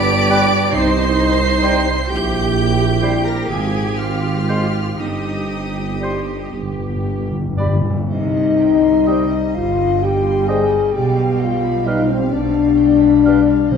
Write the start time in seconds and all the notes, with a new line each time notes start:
Already playing: G1 G2 B3 D4 G4 D5 D6 D7
0.29 G3 D4 B4 G5
0.72 C2 C4 D#4 C5 C6 C7
1.63 G3 D#4 C5 G5
2.10 A#1 C4 E4 G4 G5 G6
3.02 G3 E4 C5 G5
3.25 A#4 A#5 A#6
3.49 G#1 C4 F4 G#4 G#5 G#6
3.98 F4 F5 F6
4.49 G#3 F4 C5 C6
4.99 G1 C4 D#4 G4 D#5 D#6
6.01 G3 G4 C5 C6
6.53 G1 G2 B3 G4
6.62 G2
6.70 G2
6.79 G2
6.87 G2
6.96 G2
7.04 G2
7.13 G2
7.22 G2
7.31 G2
7.39 G2
7.48 G2
7.56 G2 G3 D5 B5
7.61 G4
7.66 G2
7.74 G2
7.82 G2
7.90 G2
7.97 G2
8.09 C2 C3 G3 D#4 C5 D#5
8.34 D#5
8.58 G5
8.83 C6
9.06 G3 C5 D#5 G5
9.31 D#5
9.54 G1 G2 F4 C5 F5
9.77 D#5
10.01 G4 G5
10.24 C6
10.47 G3 G#4 C5 D#5 G5 G#5
10.71 D#5
10.92 B1 B2 G4 D5 F5 G5
11.18 F5
11.39 F4 F5 G5
11.61 B5
11.84 G3 D#4 B4 D#5 F5 G5
12.07 C5 F5
12.11 C4
12.30 B1 B2 D4 D5
12.55 F5
12.78 G5
13.01 B5
13.25 G3 B4 F5 G5
13.48 F5
13.70 C2 C3 G3 C4 C5 D#5